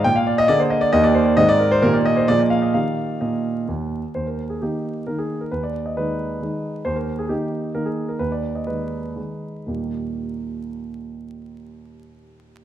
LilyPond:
<<
  \new Staff \with { instrumentName = "Grand piano" } { \time 3/4 \key ees \major \tempo 4 = 130 g''16 f''16 d''16 ees''16 d''16 c''16 ees''16 d''16 ees''16 d''16 c''16 d''16 | ees''16 d''16 bes'16 c''16 bes'16 d''16 ees''16 c''16 d''16 ees''16 f''16 ees''16 | f''4 ees''4 r4 | c''16 bes'8 aes'16 g'4 bes'16 aes'8 bes'16 |
ces''16 d''8 ees''16 ces''2 | c''16 bes'8 aes'16 g'4 bes'16 aes'8 bes'16 | ces''16 d''8 ees''16 ces''2 | <ees, bes, g bes ees' g'>2.~ |
<ees, bes, g bes ees' g'>2. | }
  \new Staff \with { instrumentName = "Grand piano" } { \clef bass \time 3/4 \key ees \major bes,4 <d bes aes'>4 <ees, ees bes g'>4 | <aes, ees c' aes'>4 <bes, ees bes g'>4 <bes, f bes aes'>4 | <ees bes g'>4 bes,4 ees,4 | ees,4 <ees bes ees'>4 <ees bes ees'>4 |
ees,4 <ees aes ees'>4 <ees aes ees'>4 | ees,4 <ees bes ees'>4 <ees bes ees'>4 | ees,4 <ees aes ees'>4 <ees aes ees'>4 | r2. |
r2. | }
>>